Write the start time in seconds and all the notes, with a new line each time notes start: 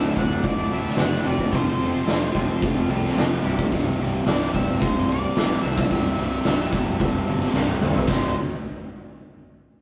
Already playing: D2 A2 D3 F#3 A3 D4 E5
0.16 D1 D2 A2 D3 F#3 A3 D4 F#5, kick
0.30 D3 F#3 A3 D4
0.43 D1 D2 A2 D3 D5, kick, open hi-hat
0.57 D3 F#3 A3 D4
0.70 D2 A2 D3 F#3 E5
0.74 A3 D4
0.84 snare
0.97 F#1 D2 A2 D3 F#3 F#5, snare, open hi-hat
1.01 A3 D4
1.12 snare
1.25 F1 F2 C3 F3 A3 C4 F4 D5
1.38 F3 A3 C4 F4, kick
1.52 F1 F2 C3 F3 A3 C4 F4 C5, kick, open hi-hat
1.66 F3 A3 C4 F4
1.79 F1 F2 C3 F3 A3 C4 F4
1.92 F3 A3 C4 F4
2.05 F1 F2 C3 F3 A3 C4 F4, snare, open hi-hat
2.10 C3 F3
2.32 F1 F2 C3 F3 A3 C4 F4, kick
2.47 F3 A3 C4 F4
2.61 F1 F2 C3 F3, kick, open hi-hat
2.75 F3 A3 C4 F4
2.88 C2 F2 C3 F3 A3 C4 F4
3.04 snare
3.15 F1 F2 C3 F3 A3 C4 F4, snare, open hi-hat
3.32 snare
3.42 C1 C2 G2 C3 G3 E4
3.57 C3 G3 E4, kick
3.71 C1 C2 G2 C3, kick, open hi-hat
3.97 C1 C2 G2 C3
4.01 C2
4.26 C1 C2 G2 C3 D5, snare, open hi-hat
4.53 C1 C2 G2 C3 E5, kick
4.80 C1 C2 G2 C3 C5, kick, open hi-hat
5.09 C2 G2 C3 D5
5.36 A1 C2 G2 C3, snare, open hi-hat
5.62 C2 G2 C3 E5
5.78 kick
5.91 C1 C2 G2 C3, kick, open hi-hat
6.17 C1 C2 G2 C3
6.45 C1 C2 G2 C3, snare, open hi-hat
6.73 C1 C2 G2 C3, kick
7.00 C1 C2 G2 C3, kick, open hi-hat
7.27 G1 C2 G2 C3
7.41 snare
7.54 C1 C2 G2 C3, snare
7.67 high tom
7.82 F1 C2 G2 C3, mid tom
7.94 floor tom
8.07 C1 C2 G2 C3 G3 E4 C5, kick, snare, ride bell